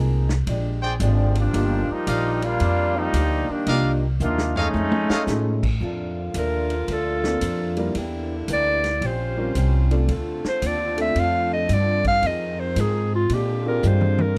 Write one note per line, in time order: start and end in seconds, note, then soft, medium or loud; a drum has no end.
0.00 0.45 C2 loud
0.00 0.31 F3 medium
0.00 0.22 G#3 medium
0.00 0.22 A#3 medium
0.00 0.22 C4 medium
0.00 0.22 D#4 medium
0.00 0.31 D#4 medium
0.00 0.23 G4 medium
0.00 0.32 G#4 medium
0.00 0.32 A#4 medium
0.29 snare medium
0.47 0.99 A#1 medium
0.47 0.84 A#2 medium
0.47 0.85 G#3 medium
0.47 0.85 D4 medium
0.47 0.86 G4 medium
0.47 kick soft
0.47 ride medium
0.82 0.95 G#4 medium
0.82 0.94 C5 medium
0.82 0.94 D5 medium
0.82 0.94 G5 loud
1.00 1.52 G#1 medium
1.00 1.38 A#2 medium
1.00 1.34 D3 medium
1.00 1.34 F3 medium
1.00 1.38 G#3 medium
1.00 1.34 G#3 medium
1.00 1.34 C4 medium
1.00 1.38 D4 medium
1.00 1.39 G4 medium
1.00 kick soft
1.00 hi-hat pedal medium
1.00 ride medium
1.35 1.89 F3 medium
1.35 1.89 G3 medium
1.35 1.89 A#3 medium
1.35 1.90 D4 loud
1.35 ride medium
1.53 1.87 G1 medium
1.53 1.91 D#3 medium
1.53 1.92 G3 soft
1.53 2.36 A#3 medium
1.53 1.92 D4 soft
1.53 2.36 D#4 medium
1.53 2.36 F4 medium
1.53 1.93 F4 medium
1.53 2.36 G4 medium
1.53 2.36 D5 medium
1.53 kick soft
1.53 ride medium
1.90 2.43 F3 medium
1.90 2.42 G3 medium
1.90 2.42 A#3 medium
1.90 2.43 D#4 loud
1.90 muted upright bass stroke soft
2.07 2.59 A#1 medium
2.07 2.45 D#3 medium
2.07 2.45 G3 medium
2.07 2.45 D4 medium
2.07 2.46 F4 medium
2.07 2.31 G4 medium
2.07 2.31 D5 medium
2.07 2.31 D#5 medium
2.07 2.31 F5 medium
2.07 kick soft
2.07 hi-hat pedal medium
2.07 ride medium
2.42 2.95 G3 loud
2.42 2.95 A#3 loud
2.42 2.96 D4 loud
2.42 2.96 F4 loud
2.42 ride medium
2.59 3.12 F2 medium
2.59 2.97 D#3 medium
2.59 2.98 G3 medium
2.59 2.98 D4 medium
2.59 2.99 F4 medium
2.59 kick soft
2.59 ride medium
2.96 3.49 F3 medium
2.96 3.49 G3 loud
2.96 3.49 A#3 medium
2.96 3.50 D#4 loud
3.13 3.47 D2 medium
3.13 3.52 D#3 medium
3.13 3.52 G3 medium
3.13 3.52 D4 medium
3.13 3.53 F4 medium
3.13 kick soft
3.13 hi-hat pedal medium
3.13 ride medium
3.49 4.03 D#3 medium
3.49 4.03 G3 medium
3.49 4.03 A#3 medium
3.49 4.03 D4 medium
3.49 muted upright bass stroke soft
3.66 4.19 C2 medium
3.66 4.05 C3 soft
3.66 4.05 F3 medium
3.66 4.00 A#3 medium
3.66 4.06 A#3 soft
3.66 4.00 D4 medium
3.66 4.00 D#4 medium
3.66 4.00 F4 medium
3.66 4.00 G4 medium
3.66 3.91 A#4 medium
3.66 3.91 D5 medium
3.66 3.91 D#5 medium
3.66 3.91 F5 loud
3.66 kick soft
3.66 ride medium
3.71 4.06 D#4 medium
4.20 4.72 D#2 loud
4.20 4.58 C3 medium
4.20 4.58 F3 medium
4.20 4.54 A#3 medium
4.20 4.59 A#3 medium
4.20 4.54 D4 medium
4.20 4.54 D#4 medium
4.20 4.59 D#4 medium
4.20 4.54 F4 loud
4.20 hi-hat pedal medium
4.38 snare medium
4.56 5.59 G#3 medium
4.56 5.59 A3 loud
4.56 5.60 C#4 loud
4.56 5.59 D#4 loud
4.56 4.69 A4 medium
4.56 4.68 C#5 medium
4.56 4.69 D#5 medium
4.56 4.69 F5 medium
4.56 floor tom medium
4.74 5.11 F2 medium
4.74 5.07 F2 medium
4.74 5.12 D#3 medium
4.74 5.13 A3 medium
4.74 5.13 C#4 medium
4.74 high tom medium
4.92 high tom medium
5.09 5.22 A4 medium
5.09 5.22 C#5 medium
5.09 5.22 D#5 medium
5.09 5.22 F5 medium
5.09 muted upright bass stroke soft
5.09 snare medium
5.27 5.65 F2 medium
5.27 5.79 A2 medium
5.27 5.65 D#3 medium
5.27 5.60 A3 medium
5.27 5.66 A3 medium
5.27 5.60 C#4 soft
5.27 5.66 C#4 medium
5.27 5.60 D#4 soft
5.27 5.60 F4 soft
5.27 5.61 G#4 medium
5.27 snare medium
5.27 hi-hat pedal medium
5.63 kick medium
5.63 crash medium
5.80 6.33 F2 medium
5.80 6.18 A#2 soft
5.80 7.93 D3 medium
5.80 6.19 F3 medium
5.80 7.94 F3 medium
5.80 6.19 A3 medium
5.80 8.99 A#3 medium
5.80 6.20 D4 medium
5.80 7.93 F4 medium
5.80 kick soft
6.34 6.86 D#2 medium
6.34 6.72 A#2 medium
6.34 6.73 F3 medium
6.34 6.73 A3 medium
6.34 6.73 D4 medium
6.34 kick soft
6.34 hi-hat pedal medium
6.34 ride medium
6.38 6.94 A#4 medium
6.70 ride soft
6.88 7.40 D2 medium
6.88 7.26 A#2 soft
6.88 7.27 F3 medium
6.88 7.27 A3 medium
6.88 kick soft
6.88 ride medium
6.92 7.27 D4 medium
6.92 7.80 A4 medium
7.24 7.40 A#3 medium
7.24 7.40 C4 medium
7.24 7.40 D4 medium
7.24 7.41 F4 medium
7.24 7.41 A4 medium
7.24 snare medium
7.41 7.93 F2 medium
7.41 7.79 A#2 medium
7.41 7.80 F3 medium
7.41 7.80 A3 medium
7.41 7.80 D4 medium
7.41 kick soft
7.41 hi-hat pedal medium
7.41 ride medium
7.77 7.93 G3 medium
7.77 7.94 A#3 medium
7.77 7.94 D4 medium
7.77 7.94 E4 medium
7.77 7.94 A#4 medium
7.77 ride soft
7.94 8.47 E2 medium
7.94 9.01 D3 medium
7.94 8.32 E3 medium
7.94 10.07 G3 medium
7.94 8.33 A#3 soft
7.94 8.34 D4 medium
7.94 9.01 E4 medium
7.94 8.34 G4 medium
7.94 kick soft
7.94 ride medium
8.48 9.00 D2 medium
8.48 8.86 E3 medium
8.48 8.86 A#3 medium
8.48 8.87 D4 medium
8.48 8.87 G4 medium
8.48 kick soft
8.48 hi-hat pedal medium
8.48 ride medium
8.53 9.08 D5 medium
8.84 snare soft
8.84 ride soft
9.01 9.54 A#1 medium
9.01 9.40 D#3 medium
9.01 10.07 C4 medium
9.01 9.40 C#4 medium
9.01 10.09 C#4 medium
9.01 13.14 F4 medium
9.01 9.41 G4 medium
9.01 9.41 C5 medium
9.01 kick soft
9.01 ride medium
9.06 9.93 C5 medium
9.37 9.53 G3 medium
9.37 9.54 C4 medium
9.37 9.54 C#4 medium
9.37 9.54 F4 medium
9.37 9.54 A#4 medium
9.55 10.07 C2 medium
9.55 9.94 D#3 medium
9.55 9.94 C#4 medium
9.55 9.94 G4 medium
9.55 9.95 C5 medium
9.55 kick soft
9.55 hi-hat pedal medium
9.55 ride medium
9.91 10.07 A3 medium
9.91 10.07 C4 medium
9.91 10.07 D4 medium
9.91 10.07 F4 medium
9.91 10.08 A4 medium
9.91 ride soft
10.07 10.42 D2 medium
10.07 12.21 D3 medium
10.07 10.46 D3 medium
10.07 12.20 A3 medium
10.07 14.33 C4 medium
10.07 10.47 C4 medium
10.07 10.48 F4 medium
10.07 kick soft
10.07 ride medium
10.12 10.48 A4 medium
10.44 muted upright bass stroke soft
10.44 snare medium
10.48 10.68 C5 medium
10.62 11.14 D#2 medium
10.62 11.00 D3 medium
10.62 11.00 C4 medium
10.62 11.01 F4 medium
10.62 11.01 A4 medium
10.62 kick soft
10.62 hi-hat pedal medium
10.62 ride medium
10.67 11.01 D5 medium
10.97 11.66 A3 medium
10.97 11.66 C4 medium
10.97 11.66 D4 medium
10.97 11.66 F4 medium
10.97 11.66 A4 medium
10.97 ride medium
11.01 11.22 E5 medium
11.15 11.68 F2 medium
11.15 11.54 D3 soft
11.15 11.54 C4 medium
11.15 11.55 F4 medium
11.15 kick soft
11.15 ride medium
11.19 11.55 A4 medium
11.19 11.53 F5 loud
11.53 11.75 D#5 medium
11.69 12.21 G2 medium
11.69 12.07 D3 medium
11.69 12.07 C4 medium
11.69 12.08 F4 medium
11.69 12.08 A4 medium
11.69 kick soft
11.69 hi-hat pedal medium
11.69 ride medium
11.74 12.07 D5 medium
12.04 12.28 F5 loud
12.04 kick medium
12.04 ride soft
12.22 12.75 F2 medium
12.22 13.14 D#3 medium
12.22 12.60 F3 soft
12.22 13.14 G#3 medium
12.22 12.61 C4 medium
12.22 12.62 D#4 medium
12.22 12.62 G#4 soft
12.22 kick soft
12.22 ride medium
12.27 12.61 D#5 medium
12.60 12.82 C5 medium
12.76 13.28 G#2 loud
12.76 13.14 F3 medium
12.76 13.15 C4 medium
12.76 13.15 D#4 medium
12.76 13.15 G#4 medium
12.76 kick soft
12.76 hi-hat pedal medium
12.76 ride medium
12.81 13.14 G#4 medium
13.15 13.36 F4 medium
13.29 13.67 A#2 medium
13.29 13.82 A#2 medium
13.29 14.36 D3 medium
13.29 13.68 G#3 medium
13.29 14.37 A#3 medium
13.29 13.69 D4 medium
13.29 14.35 F4 medium
13.29 13.69 G4 medium
13.29 kick soft
13.29 ride medium
13.34 13.67 G4 medium
13.66 14.34 C4 medium
13.66 14.34 D4 medium
13.66 14.34 F4 medium
13.66 14.34 G4 medium
13.66 14.34 G#4 medium
13.66 13.89 A#4 medium
13.83 14.36 G2 medium
13.83 14.21 A#2 medium
13.83 14.21 G#3 medium
13.83 14.22 D4 medium
13.83 14.22 G4 medium
13.83 hi-hat pedal medium
13.83 mid tom soft
13.88 14.23 C5 medium
14.01 mid tom medium
14.18 14.38 A#4 medium
14.18 mid tom medium